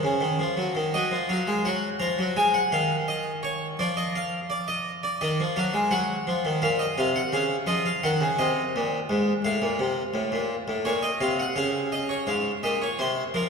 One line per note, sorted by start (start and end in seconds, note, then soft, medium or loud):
0.00 0.21 C#3 medium
0.00 0.55 D#4 medium
0.21 0.39 D#3 medium
0.39 0.58 F3 medium
0.57 0.76 F#3 medium
0.75 0.94 D#3 medium
0.94 1.12 F#3 medium
0.94 1.17 D#5 medium
1.12 1.30 F3 medium
1.29 1.47 F#3 medium
1.29 1.52 F5 medium
1.47 1.65 G#3 medium
1.65 1.87 F#3 medium
1.65 1.88 F#5 medium
2.00 2.18 F3 medium
2.00 2.22 A#5 medium
2.19 2.37 F#3 medium
2.37 2.59 G#3 medium
2.37 2.54 G#5 medium
2.54 2.72 F#5 medium
2.72 3.77 D#3 medium
2.72 2.95 F5 medium
3.08 3.31 D#5 medium
3.43 3.66 C#5 medium
3.79 5.17 F3 medium
3.79 3.97 D5 medium
3.97 4.15 D#5 medium
4.16 4.38 F5 medium
4.50 4.68 D5 medium
4.68 4.90 D#5 medium
5.03 5.21 D5 medium
5.21 5.39 D#3 medium
5.21 5.43 D#5 medium
5.40 5.57 F3 medium
5.56 5.74 F#3 medium
5.56 5.79 F5 medium
5.74 5.91 G#3 medium
5.91 6.13 F#3 medium
5.91 6.60 F#5 medium
6.27 6.44 F3 medium
6.45 6.62 D#3 medium
6.62 6.84 A#2 medium
6.62 6.79 F5 medium
6.79 6.97 D#5 medium
6.98 7.19 C3 medium
6.98 7.15 F5 medium
7.16 7.33 F#5 medium
7.33 7.54 C#3 medium
7.33 7.55 F5 medium
7.67 7.89 F3 medium
7.67 7.85 D#5 medium
7.86 8.03 F5 medium
8.03 8.21 D#3 medium
8.03 8.25 F#5 medium
8.21 8.38 C#3 medium
8.39 8.61 C3 medium
8.39 9.42 D#5 medium
8.76 8.97 A#2 loud
9.10 9.31 G#2 medium
9.45 9.62 A2 medium
9.45 10.82 F5 medium
9.62 9.79 A#2 medium
9.79 10.01 C3 medium
10.14 10.31 A2 medium
10.32 10.54 A#2 medium
10.68 10.85 A2 medium
10.85 11.08 A#2 medium
10.85 11.03 C#5 medium
11.03 11.20 D#5 medium
11.21 11.43 C3 medium
11.21 11.38 F5 medium
11.39 11.57 F#5 medium
11.56 12.26 C#3 medium
11.56 11.79 F5 medium
11.92 12.10 D#5 medium
12.09 12.27 C#5 medium
12.27 12.50 G#2 medium
12.27 12.50 F5 medium
12.63 12.86 A#2 medium
12.63 12.82 D#5 medium
12.82 13.00 C#5 medium
12.99 13.22 C3 medium
12.99 13.22 C5 medium
13.34 13.49 F3 medium
13.34 13.49 A#4 medium